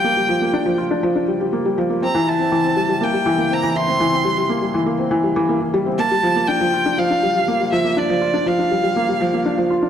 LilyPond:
<<
  \new Staff \with { instrumentName = "Violin" } { \time 4/4 \key c \mixolydian \tempo 4 = 121 g''4. r2 r8 | bes''8 a''4. g''4 bes''8 c'''8~ | c'''4. r2 r8 | a''4 g''4 f''4. e''8 |
d''4 f''2~ f''8 r8 | }
  \new Staff \with { instrumentName = "Felt piano" } { \clef bass \time 4/4 \key c \mixolydian bes16 g16 f16 bes16 d'16 f16 f'16 d'16 f16 d'16 g16 g16 bes16 g16 f16 bes16 | c'16 e16 e'16 c'16 e16 c'16 g16 g16 bes16 g16 e16 bes16 c'16 e16 e'16 c'16 | e16 c'16 g16 g16 bes16 g16 e16 bes16 c'16 e16 g16 e16 bes16 e16 g16 c'16 | bes16 g16 f16 bes16 d'16 f16 f'16 d'16 f16 d'16 g16 g16 bes16 g16 f16 bes16 |
d'16 f16 f'16 d'16 f16 d'16 g16 g16 bes16 g16 f16 bes16 d'16 f16 f'16 d'16 | }
>>